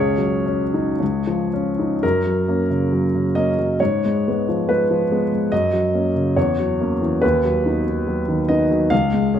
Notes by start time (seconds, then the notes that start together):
Already playing: C#2 C#4 G#4 C#5
0.18 F#3
0.46 C#4
0.74 D#4
1.00 C#2
1.27 F3
1.53 C#4
1.79 D#4
2.03 F#2 A#4
2.26 F#3
2.48 A#3 C#4
2.70 C#3
2.92 F#3
3.15 C#3
3.35 A#3 C#4 D#5
3.59 F#3
3.80 G#2 C#5
4.05 G#3
4.28 G#3 B3
4.49 F3
4.69 G#3 B4
4.91 F3
5.12 G#3 B3
5.32 G#3
5.52 F#2 D#5
5.73 F#3
5.94 A#3 C#4
6.16 C#3
6.36 E2 C#5
6.59 F#3
6.80 A#3 C#4
7.02 E3
7.22 D#2 B4
7.45 F#3
7.66 B3 D#4
7.87 D#3
8.07 F#3
8.28 D#3
8.49 B3 D#4 D#5
8.70 F#3
8.90 C#2 F5
9.13 G#3
9.34 C#4 G#4